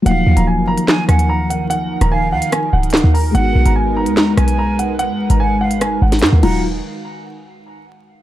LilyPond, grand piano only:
\new Staff \with { instrumentName = "Grand piano" } { \time 4/4 \key ees \minor \tempo 4 = 146 ges''8. bes''16 aes''8 bes''4 aes''8 bes''8 ges''8 | ges''8. bes''16 aes''8 ges''8 aes''8 ges''4 bes''8 | ges''8. bes''16 aes''8 bes''4 aes''8 bes''8 ges''8 | ges''8. bes''16 aes''8 ges''8 aes''8 ges''4 bes''8 |
r1 | }